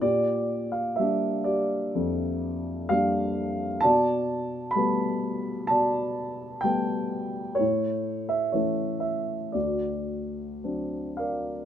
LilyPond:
<<
  \new Staff \with { instrumentName = "Grand piano" } { \time 4/4 \key bes \lydian \tempo 4 = 63 << { d''8. f''16 e''8 d''4. f''4 | a''4 b''4 a''4 g''8. r16 | cis''8. e''16 cis''8 e''8 d''4. f''8 | } \\ { g'4. g'2 r8 | d''2 d''2 | e'2 fis'4. <bes' d''>8 | } >> }
  \new Staff \with { instrumentName = "Grand piano" } { \clef bass \time 4/4 \key bes \lydian bes,4 <g bes d'>4 f,4 <g bes d'>4 | b,4 <g a b>4 b,4 <g a b>4 | a,4 <e a cis'>4 d,4 <fis c' d'>4 | }
>>